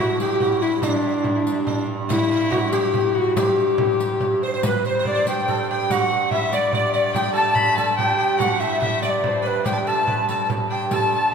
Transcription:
Already playing: G2 E4 F#4
0.00 F#4
0.20 G4, riq
0.40 F#4, frame drum
0.61 E4, frame drum
0.82 D4, riq, frame drum
0.91 E4
0.98 D4
1.06 E4
1.13 D4
1.22 E4, frame drum
1.29 D4
1.36 E4
1.42 D4
1.47 riq
1.52 E4
1.59 D4
1.67 D4, frame drum
1.88 frame drum
2.09 E4, riq, frame drum
2.31 E4
2.51 F#4, frame drum
2.71 G4, riq
2.94 frame drum
3.14 F#4 G4, frame drum
3.36 G4, riq, frame drum
3.78 frame drum
3.99 riq, frame drum
4.21 riq, frame drum
4.43 C5
4.47 C5
4.53 C5
4.62 G2 B4, riq, frame drum
4.67 B4
4.85 C5, riq
4.89 C5
4.99 C5
5.05 D5, frame drum
5.14 C5
5.27 G4 G5, riq, frame drum
5.48 A4, riq, frame drum
5.69 G4 G5
5.90 F#4 F#5, riq, frame drum
6.11 riq
6.31 E4 E5, frame drum
6.53 D5, riq, frame drum
6.73 D5, riq, frame drum
6.94 D5
7.13 G4 G5, riq, frame drum
7.33 A4 A5, riq
7.54 B5, frame drum
7.75 A4 A5, riq, frame drum
7.96 G4 G5, riq, frame drum
8.17 G4
8.38 F#4 F#5, riq, frame drum
8.42 F#5
8.59 E4 E5, riq, frame drum
8.80 E4 E5, riq, frame drum
9.02 D5 E5, riq, frame drum
9.10 D5
9.24 C5, frame drum
9.42 B4, riq, frame drum
9.47 B4
9.64 G2 G4 G5, riq, frame drum
9.73 A5
9.77 G5
9.87 A4 A5, riq
10.07 B4, frame drum
10.29 A4 A5, riq, frame drum
10.50 riq, frame drum
10.70 G4 G5
10.91 A4 A5, riq, frame drum
11.12 A5, riq

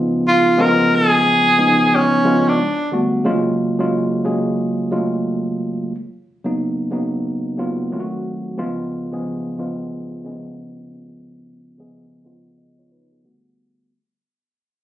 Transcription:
Already playing: C#3 F3 G#3 B3 D#4 F4 G#4
0.28 F4
0.57 C#3 F3 G#3 B3 F4 A#4
0.95 G#4
1.57 C#3 F3 G#3 B3 D#4
1.95 C#4
2.24 C#3 F3 G#3 B3 F4
2.48 D4
2.92 D3 G3 A3 B3 F#4
3.24 C#3 F#3 G#3 A#3 F4
3.79 C#3 F#3 G#3 A#3 F4
4.24 C#3 F#3 G#3 A#3 G#4
4.91 C#3 F#3 G#3 A3 F4
4.99 A#3
6.44 C#3 F#3 A#3 B3 D#4
6.91 C#3 F#3 A#3 B3 D#4
7.58 C#3 F#3 A#3 B3 F4
7.91 D#3 F#3 A3 C4 F4
8.00 F#4
8.57 C#3 F3 G#3 B3 F4
9.12 C#3 F3 G#3 B3 G#4
9.58 C#3 F3 G#3 B3 F4
10.24 C#3 F3 G#3 B3 C#4
11.78 C#3 F3 G#3 B3 G#4
12.24 C#3 F3 G#3 B3 F4
12.58 D#5
12.79 F4 C#5
12.92 D#4 B4
13.12 B3 G#4
13.24 D3 G3 A3 B3 F#4

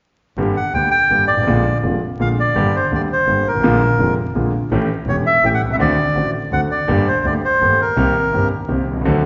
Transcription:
0.37 G1 G2 D3 G3 A#3 G4
0.57 F#5
0.74 D2 D3 G3 A#3 G4 G5
0.91 G5
1.10 G1 G2 D3 G3 A#3 G4
1.27 G#1 D5
1.33 G1
1.38 G#1
1.43 A1 A#1 D3
1.47 A#1 A#2 G#3 A#3 F4
1.82 F1 F2 D3 G#3 A#3 F4
2.19 A#1 A#2 D3 G#3 A#3 F4 F5
2.40 D5
2.55 G1 G2 D3 G3 A#3 G4
2.75 C5
2.91 D2 D3 G3 A#3 G4 D5
3.12 C5
3.27 G1 G2 D3 G3 A#3 G4
3.45 G#1 A#4
3.50 G1
3.55 G#1
3.60 A1 A#1 A#2 D3 G#3 F4
3.64 A#3
3.99 F1 F2 D3 G#3 A#3 F4
4.34 A#1 A#2 D3 G#3 A#3 F4
4.71 A1 A2 E3 A3 C#4 G4
5.06 E1 E2 E3 A3 C#4 G4 C#5
5.26 E5
5.43 A1 A2 E3 A3 C#4 G4 G5
5.54 F#5
5.60 C2
5.66 B1
5.70 C2 E5
5.75 C#2 D2
5.79 D2 D3 A3 C4 F#4 D5
6.15 A1 A2 D3 A3 C4 F#4
6.52 D2 D3 A3 C4 F#4 F#5
6.71 D5
6.88 G1 G2 D3 A3 A#3 G4
7.07 C5
7.25 D2 D3 A3 A#3 G4 D5
7.45 C5
7.60 G1 G2 D3 A3 A#3 G4
7.81 A#4
7.96 C2 C3 D#3 A#3 C4 G4
8.32 G1 G2 D#3 A#3 C4 G4
8.68 C2 C3 D#3 A#3 C4 G4
8.86 C2
8.91 B1
8.96 C2
9.01 C#2 D2
9.05 D2 D3 F#3 C4 D4 A4

